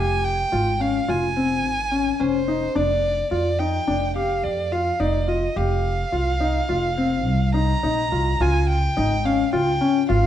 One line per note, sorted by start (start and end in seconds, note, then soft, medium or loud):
0.00 0.42 F1 medium
0.00 0.29 G4 medium
0.00 0.26 G#5 medium
0.25 0.83 G5 medium
0.52 0.98 G#1 medium
0.52 0.69 F4 medium
0.80 0.96 C#4 medium
0.80 1.10 F5 medium
1.08 1.65 F1 medium
1.08 1.25 F4 medium
1.08 2.21 G#5 medium
1.36 1.69 C4 medium
1.65 2.10 G#1 medium
1.91 2.08 C#4 medium
2.20 2.65 F1 medium
2.20 2.36 C#4 medium
2.20 2.77 C5 medium
2.48 2.64 D#4 medium
2.75 3.21 F1 medium
2.75 3.08 D4 medium
2.75 3.31 D5 medium
3.31 3.77 F2 medium
3.31 3.48 F4 medium
3.31 3.60 D5 medium
3.59 3.76 D#4 medium
3.59 4.15 G5 medium
3.87 4.45 F1 medium
3.87 4.04 D4 medium
4.16 4.48 G4 medium
4.16 4.45 F5 medium
4.43 4.89 F2 medium
4.43 4.73 D5 medium
4.72 4.88 F4 medium
4.72 5.01 F5 medium
5.00 5.46 F1 medium
5.00 5.16 D#4 medium
5.00 5.30 D5 medium
5.28 5.44 F4 medium
5.28 5.58 D#5 medium
5.56 6.02 F1 medium
5.56 5.89 G4 medium
5.56 7.54 F5 medium
6.12 6.59 C2 medium
6.12 6.29 F4 medium
6.40 6.57 D#4 medium
6.69 7.26 F1 medium
6.69 6.85 F4 medium
6.97 7.31 C4 medium
7.26 7.73 C2 medium
7.54 7.71 D#4 medium
7.54 8.43 A#5 medium
7.83 8.10 A#1 medium
7.83 8.00 D#4 medium
8.12 8.38 C2 medium
8.12 8.29 F4 medium
8.40 8.86 C#2 medium
8.40 8.74 F4 medium
8.40 8.69 G#5 medium
8.69 9.27 G5 medium
8.97 9.43 G#1 medium
8.97 9.13 D#4 medium
9.25 9.41 C#4 medium
9.25 9.53 F5 medium
9.53 9.76 C#2 medium
9.53 9.69 F4 medium
9.53 10.06 G5 medium
9.81 9.97 C#4 medium
10.09 10.27 G#1 medium
10.09 10.27 F4 medium
10.09 10.27 F5 medium